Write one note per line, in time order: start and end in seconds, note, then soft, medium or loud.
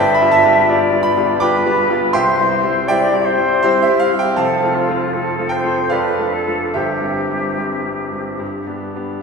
0.00 0.20 G1 medium
0.00 0.20 G2 medium
0.00 0.14 B4 medium
0.00 0.14 D5 medium
0.00 0.71 E5 loud
0.00 0.14 G5 loud
0.15 0.33 B5 loud
0.21 0.42 G3 medium
0.21 0.43 B3 medium
0.21 0.43 F4 medium
0.31 1.04 A5 loud
0.45 0.66 G3 medium
0.45 0.66 B3 medium
0.45 0.67 F4 medium
0.69 0.90 G3 medium
0.69 0.90 B3 medium
0.69 0.91 F4 medium
0.69 1.40 D5 medium
0.92 1.14 G3 medium
0.92 1.14 B3 medium
0.92 1.15 F4 medium
1.03 1.40 B5 loud
1.17 1.39 G3 medium
1.17 1.39 B3 medium
1.17 1.39 F4 medium
1.40 1.63 G3 medium
1.40 1.63 B3 medium
1.40 1.63 F4 medium
1.40 2.15 B4 loud
1.40 2.11 G5 medium
1.40 2.10 B5 loud
1.40 2.14 D6 loud
1.65 1.87 G3 medium
1.65 1.87 B3 medium
1.65 1.88 F4 medium
1.89 2.12 G3 medium
1.89 2.12 B3 medium
1.89 2.12 F4 medium
2.13 2.39 C2 medium
2.13 2.89 C5 medium
2.13 2.85 E5 medium
2.13 2.85 G5 loud
2.13 2.88 C6 loud
2.38 2.61 G3 medium
2.38 2.62 C4 medium
2.38 2.62 E4 medium
2.64 2.86 G3 medium
2.64 2.86 C4 medium
2.64 2.86 E4 medium
2.88 3.11 G3 medium
2.88 3.11 C4 medium
2.88 3.11 E4 medium
2.88 3.59 C5 medium
2.88 3.27 D5 medium
2.88 3.59 E5 loud
2.88 3.63 G5 loud
3.13 3.35 G3 medium
3.13 3.36 C4 medium
3.13 3.36 E4 medium
3.25 4.11 C5 loud
3.38 3.60 G3 medium
3.38 3.61 C4 medium
3.38 3.61 E4 medium
3.63 3.86 G3 medium
3.63 3.87 C4 medium
3.63 3.81 E4 medium
3.63 3.81 G4 medium
3.63 3.82 C5 loud
3.82 4.01 E5 loud
3.89 4.11 G3 medium
3.89 4.11 C4 medium
3.89 4.11 E4 medium
3.99 4.19 F5 loud
4.13 4.35 G3 medium
4.13 4.35 C4 medium
4.13 4.36 E4 medium
4.19 4.38 G5 loud
4.36 4.61 F1 medium
4.36 4.61 F2 medium
4.36 5.46 C5 loud
4.36 5.46 F5 medium
4.36 5.50 A5 loud
4.41 4.76 A4 medium
4.63 4.85 A3 medium
4.63 4.85 C4 medium
4.63 4.86 F4 medium
4.75 5.15 F4 medium
4.88 5.10 A3 medium
4.88 5.10 C4 medium
4.88 5.11 F4 medium
5.14 5.36 A3 medium
5.14 5.36 C4 medium
5.14 5.36 F4 medium
5.14 5.53 A4 medium
5.39 5.62 A3 medium
5.39 5.62 C4 medium
5.39 5.62 F4 medium
5.49 5.94 C5 medium
5.49 5.90 G5 loud
5.63 5.88 A3 medium
5.63 5.88 C4 medium
5.63 5.89 F4 medium
5.90 6.18 F2 medium
5.90 6.70 A4 medium
5.90 6.35 B4 medium
5.90 6.70 D5 medium
5.90 6.73 F5 loud
6.19 6.43 A3 medium
6.19 6.44 D4 medium
6.19 6.44 F4 medium
6.33 6.74 A4 medium
6.47 6.72 A3 soft
6.47 6.72 D4 soft
6.47 6.72 F4 medium
6.74 7.01 G1 medium
6.74 7.02 G2 medium
6.74 8.37 G4 medium
6.74 8.78 G4 medium
6.74 8.37 C5 medium
6.74 8.40 E5 medium
7.02 7.27 G3 soft
7.02 7.27 C4 medium
7.29 7.55 G3 soft
7.29 7.55 C4 medium
7.57 7.83 G3 soft
7.57 7.83 C4 medium
7.85 8.10 G3 soft
7.85 8.10 C4 soft
8.12 8.37 G3 soft
8.12 8.37 C4 soft
8.39 8.66 G2 medium
8.67 8.92 G3 soft
8.67 8.92 B3 soft
8.67 8.92 D4 medium
8.96 9.20 G3 soft
8.96 9.20 B3 soft
8.96 9.20 D4 medium